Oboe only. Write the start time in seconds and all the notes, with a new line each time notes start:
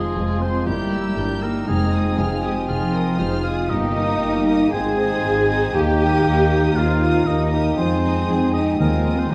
Already playing: G#4
0.41 C5
0.67 G4
1.43 A#4
1.67 G#4
2.43 G#4
2.68 F4
3.43 F5
3.70 D#5
4.72 G#5
5.75 G5
6.76 F5
7.27 D#5
7.78 C5
8.54 D#5
8.80 A#4
9.19 C5
9.31 G4